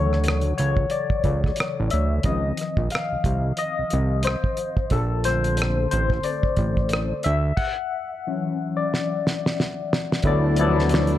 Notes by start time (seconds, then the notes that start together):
Already playing: D2 C#3 E3 F#3 A4 C#5 F#5 C#6
0.13 cross-stick
0.24 closed hi-hat
0.28 cross-stick
0.41 closed hi-hat
0.58 C#2 C#5, closed hi-hat
0.77 kick
0.90 D5, closed hi-hat
1.10 kick
1.24 C#2, kick, closed hi-hat
1.44 kick, cross-stick
1.56 closed hi-hat
1.60 cross-stick
1.80 A1
1.90 D2 E5, closed hi-hat
2.23 C#2 D#3 F3 C4 D#5, kick, closed hi-hat
2.57 closed hi-hat
2.61 cross-stick
2.77 A#1, kick
2.90 F5, closed hi-hat
2.95 cross-stick
3.12 C2
3.24 C2, kick, closed hi-hat
3.57 D#5, closed hi-hat
3.79 C2
3.90 C2, closed hi-hat
4.23 C5, closed hi-hat
4.27 cross-stick
4.44 kick
4.57 closed hi-hat
4.77 kick
4.90 A#1 A4, kick, closed hi-hat
5.24 D3 A3 C4 C5, closed hi-hat
5.28 cross-stick
5.44 closed hi-hat
5.57 closed hi-hat
5.62 cross-stick
5.91 A1 C5, closed hi-hat
6.10 kick, cross-stick
6.23 D5, closed hi-hat
6.43 kick
6.57 A1, kick, closed hi-hat
6.77 kick
6.89 closed hi-hat
6.93 cross-stick
7.23 D2 E5, closed hi-hat
7.57 F#5, kick, crash
8.27 E3 F#3 C#4
8.77 D5
8.94 snare
9.27 snare
9.46 snare
9.60 snare
9.93 snare
10.12 snare
10.22 D2 F#3 A3 B3 D4 E4 A4, kick, closed hi-hat
10.27 D5
10.56 F3 B3 E4 A4, closed hi-hat
10.61 F#3 D5
10.79 snare
10.89 closed hi-hat
10.94 finger snap, snare
11.07 closed hi-hat